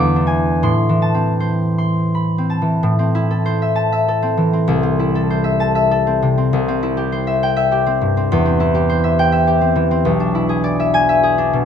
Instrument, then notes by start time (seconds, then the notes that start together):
harp
Already playing: E2 B3 B5 D6
0.16 D4
0.27 G#5
0.63 A2 C6
0.89 E3
1.02 A5
1.15 C4
1.40 C5
1.78 C6
2.15 B5
2.38 C4
2.50 A5
2.62 E3
2.83 A2
2.99 C4
3.15 E4
3.31 A4
3.46 C5
3.62 E5
3.76 A5
3.92 E5
4.08 A4
4.22 C4
4.37 E3
4.53 C4
4.68 C2
4.83 C4
4.99 E4
5.15 A4
5.30 C5
5.44 E5
5.60 A5
5.75 E5
5.91 A4
6.07 C4
6.22 C3
6.38 C4
6.53 C2
6.68 C4
6.83 E4
6.97 G4
7.12 C5
7.27 E5
7.43 G5
7.56 E5
7.72 G4
7.86 C4
8.01 G2
8.17 C4
8.32 E2
8.46 C4
8.60 E4
8.74 G4
8.89 C5
9.04 E5
9.19 G5
9.32 E5
9.47 G4
9.61 C4
9.76 E3
9.91 C4
10.05 B1
10.20 D4
10.35 E4
10.49 G#4
10.64 D5
10.80 E5
10.94 G#5
11.09 E5
11.23 G#4
11.38 D4
11.53 B2